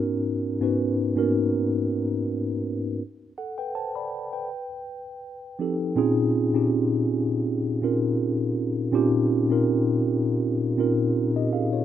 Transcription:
X:1
M:4/4
L:1/16
Q:"Swing 16ths" 1/4=81
K:Abdor
V:1 name="Tine electric piano"
[A,,CDEGB]2 z [A,,CDEGc]3 [A,,B,CDEGB]6- [A,,B,CDEGB] z3 | z2 [=Ag] [c=g] [=c=a] [=d_c']2 [_cg]2 z4 z [F,=CE=GA]2 | [K:Bbdor] [B,,CDEFA]3 [B,,CDEFG]6 z [B,,CDEFB]4- [B,,CDEFB] z | [B,,CDEFG]3 [B,,CDEFB]6 z [B,,CDEFB]3 [Ge] [Af] [Fd] |]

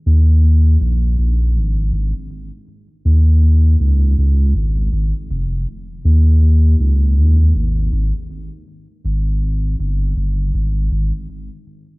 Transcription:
X:1
M:4/4
L:1/16
Q:"Swing 16ths" 1/4=80
K:Dblyd
V:1 name="Sub bass" clef=bass
E,,4 B,,,2 B,,,2 A,,,2 A,,, z4 z | E,,4 D,,2 D,,2 A,,,2 A,,, z F,,,2 z2 | E,,4 D,,2 E,,2 A,,,2 A,,, z4 z | A,,,4 G,,,2 G,,,2 A,,,2 A,,, z4 z |]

